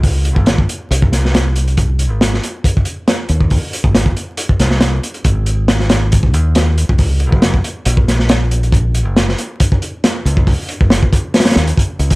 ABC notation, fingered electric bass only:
X:1
M:4/4
L:1/16
Q:1/4=138
K:Abmix
V:1 name="Fingered electric bass" clef=bass
D,,3 A,,,3 z2 C,,8- | C,,3 A,,,3 z8 E,,2- | E,, z2 A,,,3 z4 C,,4 z2 | A,,,8- A,,,2 E,,4- E,, D,,- |
D,,3 G,,,3 z2 B,,,8- | B,,,3 G,,,3 z8 D,,2- | D,, z2 G,,,3 z4 E,, z3 D,, z |]